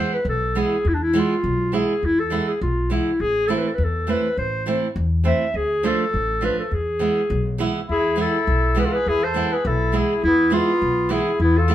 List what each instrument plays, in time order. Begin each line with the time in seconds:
Already playing: nylon-string guitar E3 G#3 B3 E4, clarinet C5
0.14 clarinet B4
0.25 upright bass B1, clarinet A4
0.55 nylon-string guitar E3 G#3 B3 E4, clarinet G#4
0.85 upright bass E2, clarinet E4
0.94 clarinet D4
1.03 clarinet E4
1.13 nylon-string guitar E3 G#3 B3 E4
1.19 clarinet F4
1.44 upright bass B1
1.72 nylon-string guitar E3 G#3 B3 E4, clarinet G#4
2.03 upright bass E2, clarinet E4
2.19 clarinet A4
2.30 nylon-string guitar E3 G#3 B3 E4
2.48 clarinet G#4
2.61 upright bass B1, clarinet F4
2.90 nylon-string guitar E3 G#3 B3 E4, clarinet E4
3.20 upright bass A1, clarinet G#4
3.47 nylon-string guitar E3 A3 C4 E4, clarinet A4
3.58 clarinet B4
3.68 clarinet A4
3.75 upright bass E2, clarinet B4
3.84 clarinet A4
4.07 nylon-string guitar E3 A3 C4 E4, clarinet B4
4.37 upright bass A1, clarinet C5
4.66 nylon-string guitar E3 A3 C4 E4
4.96 upright bass E2
5.24 nylon-string guitar E3 A3 C4 E4, clarinet E5
5.54 upright bass D2, clarinet G#4
5.83 nylon-string guitar F3 A3 D4 F4, clarinet A4
6.14 upright bass A1
6.41 nylon-string guitar F3 A3 D4 F4, clarinet B4
6.59 clarinet A4
6.71 upright bass E2, clarinet G#4
6.99 nylon-string guitar E3 G#3 B3 E4
7.30 upright bass B1
7.58 nylon-string guitar E3 G#3 B3 E4
7.89 upright bass E2, trumpet E4, clarinet G#4
8.16 nylon-string guitar E3 G#3 B3 E4
8.20 trumpet E4, clarinet A4
8.47 upright bass B1
8.75 nylon-string guitar E3 G#3 B3 E4, trumpet G#4
8.79 clarinet B4
8.84 trumpet F4, clarinet A4
8.92 trumpet G#4, clarinet B4
9.06 upright bass E2, trumpet E4, clarinet G#4
9.23 trumpet A4, clarinet C5
9.34 nylon-string guitar E3 G#3 B3 E4
9.52 trumpet G#4, clarinet B4
9.65 upright bass B1, trumpet E4, clarinet A4
9.92 nylon-string guitar E3 G#3 B3 E4, clarinet G#4
9.97 trumpet E4
10.23 upright bass E2, trumpet B3, clarinet E4
10.50 nylon-string guitar E3 G#3 B3 E4, clarinet F4
10.55 trumpet B3
10.82 upright bass B1
11.09 nylon-string guitar E3 G#3 B3 E4, trumpet E4, clarinet G#4
11.40 upright bass E2, trumpet B3, clarinet E4
11.58 trumpet F4, clarinet A4
11.68 nylon-string guitar E3 G#3 B3 E4